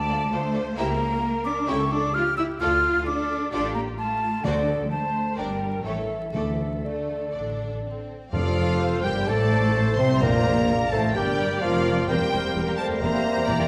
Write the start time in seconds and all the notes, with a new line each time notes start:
Already playing: D2 A3 D5 A5
0.09 F4 A4 D5
0.32 D2 F4 A4 C5 D5
0.54 F4 A4 D5
0.77 C#2 A#3 E4 G4 A#4 E5 A#5
1.45 D4 D6
1.68 C#2 C#4 E4 G4 A4 E5 C#6
1.91 D4 D6
2.14 F4 G4 F6
2.37 E4 E6
2.60 D2 F4 A4 D5 F6
3.06 D4 A4 D6
3.52 A1 D4 F4 G4 A4 D5 D6
3.75 A#3 A#5
3.98 A3 F4 A5
4.44 D2 D3 F#4 A4 C5 D5
4.90 A3 C5 A5
5.37 G1 G3 D4 A#4 D5 G5
5.85 A1 E3 A3 A4 C#5 E5
6.34 D2 D3 E3 A3 A4 D5 E5
6.84 D3 A3 D5
7.34 A1 D4 D5
7.85 C4
8.32 F1 F2 F3 F4 A4 D5 F5
8.82 C5
9.03 G1 G2 G3 G4 A#4 G5
9.28 A1 A2 A3 A4 C5 D5 A5
9.75 C5
9.97 C2 C3 C4 C5 E5 C6
10.21 A#1 F2 A#2 A#3 A#4 D5 A#5
10.69 A#4
10.91 A1 A2 A3 A4 C5 A5
11.14 G1 G2 G3 G4 A#4 D5 G5
11.61 F1 F2 F3 F4 A#4 F5
12.08 E1 E2 C3 G3 A#3 C4 A#4 C5 G5
12.20 E2 A#3 G4
12.31 E1 E2 G3 E4
12.43 E2 A#3 G4
12.54 E1 E2 C4 A#4
12.66 E2 A#3 G4
12.78 A3 C5 A5
12.90 E2 A#3 G4
13.01 E1 E2 C3 A#3 C4 A#4 C5 E5 A#5
13.13 E2 A#3 G4
13.36 E2 A#3 G4
13.47 E1 E2 C4 A#4 D5
13.59 E2 A#3 G4